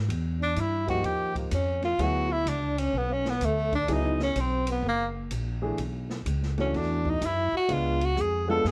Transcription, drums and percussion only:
0.10 ride medium
0.56 hi-hat pedal soft
0.56 ride medium
0.88 kick soft
0.88 ride soft
1.04 ride soft
1.35 kick medium
1.35 ride soft
1.51 hi-hat pedal soft
1.51 ride medium
1.82 snare soft
1.82 ride soft
1.99 ride medium
2.47 hi-hat pedal medium
2.47 ride medium
2.78 ride medium
3.25 snare soft
3.41 hi-hat pedal medium
3.41 ride medium
3.72 kick medium
3.72 ride soft
3.88 ride medium
4.20 snare medium
4.36 hi-hat pedal medium
4.36 ride medium
4.67 ride medium
5.31 hi-hat pedal medium
5.31 ride medium
5.78 ride medium
6.10 snare soft
6.26 hi-hat pedal medium
6.26 ride medium
6.43 snare soft
6.58 snare soft
6.58 ride soft
6.74 snare soft
6.74 ride medium
7.05 kick medium
7.22 hi-hat pedal medium
7.22 ride medium
7.69 ride medium
8.01 ride soft
8.17 hi-hat pedal soft
8.17 high tom soft
8.50 high tom medium
8.65 snare medium

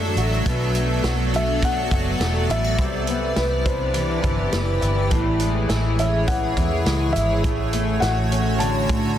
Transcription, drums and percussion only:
0.17 closed hi-hat soft
0.46 kick loud
0.46 closed hi-hat medium
0.75 closed hi-hat medium
1.04 snare loud
1.04 closed hi-hat medium
1.34 closed hi-hat soft
1.62 kick medium
1.62 closed hi-hat medium
1.91 kick medium
1.91 closed hi-hat soft
2.21 snare medium
2.21 closed hi-hat medium
2.50 closed hi-hat soft
2.78 kick loud
2.78 closed hi-hat medium
3.07 closed hi-hat medium
3.36 snare medium
3.36 closed hi-hat medium
3.66 kick medium
3.66 closed hi-hat medium
3.94 closed hi-hat medium
4.24 kick medium
4.24 closed hi-hat soft
4.53 snare medium
4.53 closed hi-hat medium
4.82 closed hi-hat soft
5.11 kick loud
5.11 closed hi-hat medium
5.40 closed hi-hat soft
5.69 snare medium
5.69 closed hi-hat medium
5.99 closed hi-hat soft
6.28 kick medium
6.28 closed hi-hat medium
6.57 kick medium
6.57 closed hi-hat soft
6.86 snare medium
6.86 closed hi-hat medium
7.16 closed hi-hat soft
7.44 kick loud
7.44 closed hi-hat medium
7.73 closed hi-hat medium
8.02 snare medium
8.02 closed hi-hat medium
8.32 closed hi-hat medium
8.60 closed hi-hat medium
8.89 kick medium
8.89 closed hi-hat soft

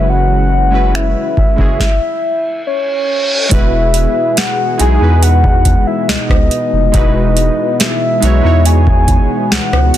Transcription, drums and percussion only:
0.95 finger snap loud
1.37 kick loud
1.58 kick medium
1.80 kick medium
1.80 snare medium
3.51 kick loud
3.51 closed hi-hat medium
3.94 closed hi-hat medium
4.37 snare loud
4.37 closed hi-hat medium
4.79 closed hi-hat medium
5.23 closed hi-hat medium
5.44 kick loud
5.65 kick medium
5.65 closed hi-hat medium
6.09 snare loud
6.29 kick loud
6.29 cross-stick loud
6.51 closed hi-hat medium
6.94 kick loud
6.94 closed hi-hat medium
7.37 closed hi-hat medium
7.80 snare loud
7.80 closed hi-hat medium
8.22 closed hi-hat medium
8.65 closed hi-hat medium
8.87 kick medium
9.08 kick medium
9.08 closed hi-hat medium
9.52 snare loud
9.73 cross-stick loud
9.94 closed hi-hat medium

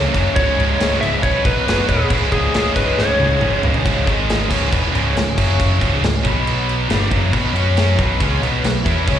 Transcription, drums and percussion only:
0.14 kick medium
0.14 crash medium
0.36 kick loud
0.36 crash medium
0.60 crash medium
0.80 snare loud
0.80 crash medium
1.03 crash medium
1.23 kick loud
1.23 crash medium
1.45 kick loud
1.45 crash medium
1.68 snare loud
1.68 crash medium
1.89 kick medium
1.89 crash medium
2.10 kick loud
2.10 crash medium
2.32 kick medium
2.32 crash medium
2.54 snare loud
2.54 crash medium
2.76 kick loud
2.76 crash medium
2.99 snare medium
3.20 high tom medium
3.31 high tom medium
3.41 mid tom medium
3.63 floor tom loud
3.74 floor tom loud
3.86 kick loud
3.86 crash medium
4.07 kick loud
4.07 crash medium
4.30 snare loud
4.30 crash medium
4.51 kick loud
4.51 crash loud
4.73 kick loud
4.73 crash medium
4.95 crash medium
5.17 snare loud
5.17 crash medium
5.38 kick loud
5.38 crash loud
5.60 kick loud
5.60 crash medium
5.81 kick medium
5.81 crash medium
6.04 snare loud
6.04 crash medium
6.25 kick loud
6.25 crash medium
6.47 crash medium
6.69 crash medium
6.90 snare loud
6.90 crash medium
7.11 kick loud
7.11 crash medium
7.33 kick loud
7.33 crash medium
7.56 crash medium
7.77 snare loud
7.77 crash medium
7.99 kick loud
7.99 crash medium
8.20 kick loud
8.20 crash medium
8.43 crash medium
8.64 snare loud
8.64 crash medium
8.86 kick loud
8.86 crash medium
9.08 kick loud
9.08 crash medium

